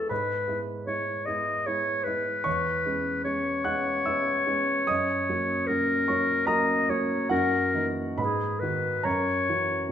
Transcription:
Already playing: grand piano G#3 B3 E4 C#5 E5 C#6 E6
0.09 grand piano G#2 B4 B5, clarinet B4
0.48 grand piano G#3 B3 E4
0.87 grand piano G#3 B3 E4, clarinet C#5
1.26 grand piano G#3 B3 E4, clarinet D#5
1.66 grand piano G#3 B3 E4, clarinet C#5
2.04 grand piano G#3 B3 E4, clarinet B4
2.44 grand piano E2 C#5 C#6
2.86 grand piano G#3 B3 C#4
3.24 grand piano G#3 B3 C#4, clarinet C#5
3.64 grand piano G#3 B3 C#4 F#5 F#6
4.06 grand piano G#3 B3 C#4 E5 E6
4.47 grand piano G#3 B3 C#4
4.87 grand piano F#2 D#5 D#6
5.29 grand piano F#3 A#3 C#4
5.67 grand piano F#3 A#3 C#4, clarinet A#4
6.08 grand piano F#3 A#3 C#4 C#5 C#6
6.47 grand piano F#3 A#3 C#4 A#4 A#5, clarinet D#5
6.89 grand piano F#3 A#3 C#4, clarinet C#5
7.29 grand piano F#2 F#4 F#5, clarinet A#4
7.74 grand piano E3 A#3 D#4
8.18 grand piano G#2 B4 B5, clarinet G#4
8.60 grand piano D#3 B3 F#4, clarinet B4
9.03 grand piano F#2 A#4 A#5, clarinet C#5
9.49 grand piano E3 C#4 F#4
9.89 grand piano B2

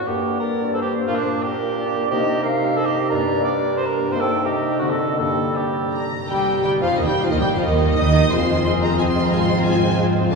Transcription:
Already playing: harp D4
0.06 bassoon G2, harp G2, clarinet A#3, french horn section A#3 D4, cor anglais G4, flute section A#4
0.25 harp A#4
0.38 harp D4, cor anglais A#4, flute section D5
0.58 harp A#4
0.73 harp D4, cor anglais A4, flute section C5
0.82 cor anglais G4
0.92 harp A#3
1.07 bassoon A#2, harp A#2, french horn section A#3 D4, clarinet D4, cor anglais F4
1.15 cor anglais D4
1.26 harp A#4
1.43 harp D4, cor anglais G4, flute section A#4
1.60 harp A#4
1.76 harp D4, flute section D5
1.95 harp A#3
2.10 bassoon C3, harp C3, french horn section A#3 D#4, clarinet D#4, cor anglais G4, flute section D#5
2.28 harp G4
2.43 harp D#4, cor anglais A#4, flute section F5
2.60 harp G4
2.77 harp D#4, cor anglais A4, flute section D#5
2.85 cor anglais G4
2.94 harp A#3
3.10 bassoon G2, harp G2, french horn section A#3 D4, clarinet D4, cor anglais A#4, flute section D5
3.28 harp G4
3.44 harp D4, flute section A#4, cor anglais D5
3.61 harp G4
3.77 harp D4, cor anglais C5
3.86 cor anglais A#4
3.95 harp A#3
4.11 harp C3, bassoon C3, french horn section A#3 D#4, clarinet D#4, cor anglais C5, flute section G5
4.20 cor anglais A4
4.29 harp G4
4.45 harp D#4, cor anglais G4, flute section D#5
4.64 harp G4
4.80 harp D3, bassoon D3, clarinet C4, french horn section C4 D#4, cor anglais F#4
4.90 cor anglais A4
5.00 harp D#4 F#4
5.18 harp G2, bassoon G3, clarinet A#3, french horn section A#3 D4, cor anglais A4, flute section D5
5.37 harp G4
5.56 harp D4, cor anglais G4
5.75 harp G4
5.93 harp D4, violin section A#5
6.12 harp A#3
6.28 double bass section G1, cello section G2, harp C3, french horn section G3, viola section G3, bassoon G3, violin section G4 G5, clarinet G4, cor anglais G5
6.47 harp C4
6.62 double bass section G1, cello section G2, french horn section G3, bassoon G3, viola section G3, harp D#4, clarinet G4, violin section G4 G5, cor anglais G5
6.80 double bass section F1, cello section F2, french horn section F3, bassoon F3, viola section F3, clarinet F4, violin section F4 F5, harp G4, cor anglais F5
6.97 cello section D#2, double bass section D#2, bassoon D#3, viola section D#3, french horn section D#3, clarinet D#4, violin section D#4 D#5, harp D#4, cor anglais D#5
7.05 double bass section G1, cello section G2, bassoon G3, viola section G3, french horn section G3, clarinet G4, violin section G4 G5, cor anglais G5
7.14 harp G3
7.22 cello section F2, bassoon F3, french horn section F3, viola section F3, clarinet F4, violin section F4 F5, cor anglais F5
7.30 cello section D#2, double bass section D#2, french horn section D#3, bassoon D#3, harp D#3, viola section D#3, clarinet D#4, violin section D#4 D#5, cor anglais D#5
7.38 double bass section G1, cello section G2, viola section G3, french horn section G3, bassoon G3, clarinet G4, violin section G4 G5, cor anglais G5
7.48 harp G3
7.55 cello section F2, viola section F3, french horn section F3, bassoon F3, clarinet F4, violin section F4 F5, cor anglais F5
7.62 viola section D#3, clarinet D#4, violin section D#5
7.66 double bass section D#2, cello section D#2, bassoon D#3, french horn section D#3, violin section D#4, harp G4, cor anglais D#5
7.83 harp C4
7.96 double bass section D#2, cello section D#3, viola section D#4, bassoon D#4, clarinet D#5, cor anglais D#5, violin section D#5 D#6
8.00 french horn section D#4, harp C5
8.17 harp G4
8.31 double bass section F1, cello section F2, harp F3, bassoon G#3, french horn section C4 G#4, viola section C4 F4, clarinet F4, violin section G#4 C5 C6, cor anglais C5
8.49 harp G#3, bassoon G#3, clarinet F4, cor anglais C5
8.64 bassoon G#3, clarinet F4, harp F4, cor anglais C5, violin section C6
8.82 bassoon G#3, clarinet F4, harp G#4, cor anglais C5, violin section A#5
8.98 bassoon G#3, clarinet F4, harp C5, cor anglais C5, violin section G#5
9.08 violin section C6
9.15 bassoon G#3, clarinet F4, harp F4, cor anglais C5
9.25 violin section A#5
9.31 double bass section G#1, harp G#2, cello section G#2, bassoon G#3, french horn section F4, violin section F4 G#5, clarinet F4, cor anglais C5
9.42 violin section C6
9.48 harp F3, bassoon G#3, clarinet F4, cor anglais C5
9.57 violin section A#5
9.65 bassoon G#3, harp C4, clarinet F4, cor anglais C5, violin section G#5
9.81 bassoon G#3, clarinet F4, harp F4, cor anglais C5
9.99 bassoon G#3, clarinet F4, harp G#4, cor anglais C5
10.15 bassoon G#3, harp C4, clarinet F4, cor anglais C5
10.31 double bass section F#1, viola section A3 D4, violin section F#4 A5, clarinet A4

